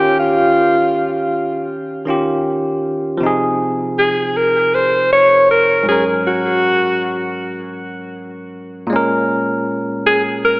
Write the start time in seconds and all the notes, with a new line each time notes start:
Already playing: D#3 C#4 F4 G4
0.19 F4
2.06 D#3 C#4 F4
2.10 G4
3.17 C3 F3
3.23 D#4 G#4
3.99 G#4
4.37 A#4
4.75 C5
5.13 C#5
5.51 A#4
5.83 G#2 F#3
5.89 C#4 G#4 A#4
6.27 F#4
8.87 A#2 G#3
8.93 C#4 A#4
10.07 G#4
10.45 A#4